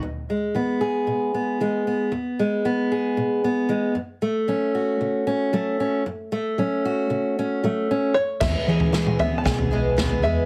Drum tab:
CC |----------------|----------------|----------------|----------------|
SD |----------------|----------------|----------------|----------------|
T2 |----------------|----------------|----------------|----------------|
FT |----------------|----------------|----------------|----------------|
BD |----------------|----------------|----------------|----------------|

CC |x---------------|
SD |o---o---o---o---|
T2 |-----o----------|
FT |o--o--o--o--o---|
BD |o-------o-------|